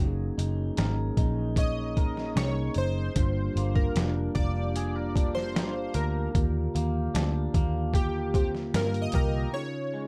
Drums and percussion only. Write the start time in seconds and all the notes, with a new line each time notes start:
0.39 closed hi-hat
0.77 snare, closed hi-hat
1.17 kick, closed hi-hat
1.56 kick, closed hi-hat
1.97 kick, closed hi-hat
2.17 snare
2.37 snare, closed hi-hat
2.74 closed hi-hat
3.16 kick, closed hi-hat
3.57 closed hi-hat
3.76 kick
3.96 snare, closed hi-hat
4.35 kick, closed hi-hat
4.76 closed hi-hat
5.16 kick, closed hi-hat
5.37 snare
5.56 snare, closed hi-hat
5.94 closed hi-hat
6.35 kick, closed hi-hat
6.76 closed hi-hat
7.15 snare, closed hi-hat
7.54 kick, closed hi-hat
7.94 kick, closed hi-hat
8.34 kick, closed hi-hat
8.55 snare
8.74 snare, closed hi-hat
8.94 closed hi-hat
9.12 kick, closed hi-hat